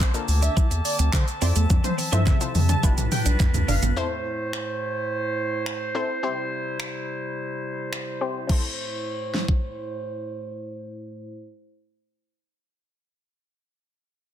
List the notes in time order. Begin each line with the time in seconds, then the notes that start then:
Already playing: D3 A#3 C4 A5
0.00 C5, kick, clap, shaker
0.14 A#3 D4 F4 A4 A#4, muted clean electric guitar stroke, closed hi-hat, shaker
0.28 D2, open hi-hat, shaker
0.43 D4 E5, closed hi-hat, shaker
0.57 E4, kick, shaker
0.71 E2, muted clean electric guitar stroke, closed hi-hat, shaker
0.85 D5, open hi-hat, shaker
0.99 D2 C4, closed hi-hat, shaker
1.13 D3 C5, muted clean electric guitar stroke, kick, clap, shaker
1.28 closed hi-hat, shaker
1.42 F2 F3 C4 E4 F4 A4 C5 D5 E5, open hi-hat, shaker
1.56 E2 A3, closed hi-hat, shaker
1.70 F2, kick, high tom, shaker
1.84 C5, muted clean electric guitar stroke, closed hi-hat, high tom, shaker
1.98 C4, open hi-hat, shaker
2.12 G2 C4 E4 F4 A4 C5 E5, closed hi-hat, high tom, shaker
2.27 C4 E5, kick, clap, mid tom, shaker
2.41 C4 E4 F4 A4 C5, muted clean electric guitar stroke, closed hi-hat, shaker
2.55 F2, open hi-hat, mid tom, shaker
2.69 D4 A5, closed hi-hat, mid tom, shaker
2.83 G1 G3 B3 D4 E4 F4 G4 B4, kick, shaker
2.98 B1, muted clean electric guitar stroke, closed hi-hat, mid tom, shaker
3.12 G5, mid tom, open hi-hat, shaker
3.26 B1 D4, closed hi-hat, shaker
3.40 muted clean electric guitar stroke, kick, clap, floor tom, shaker
3.54 D2, closed hi-hat, floor tom, shaker
3.68 G1 D4 F5, floor tom, open hi-hat, shaker
3.83 G#1 B3, closed hi-hat, floor tom, shaker
3.96 A2 A3 C4 E4 A4 C5
4.53 finger snap
5.66 finger snap
5.95 C4 E4 A4 C5
6.23 C3 G3 C4 E4 G4 C5
6.80 finger snap
7.93 finger snap
8.21 C4 E4 G4 C5
8.47 A2 C4 E4 A4 C5, kick, crash
9.34 snare
9.48 kick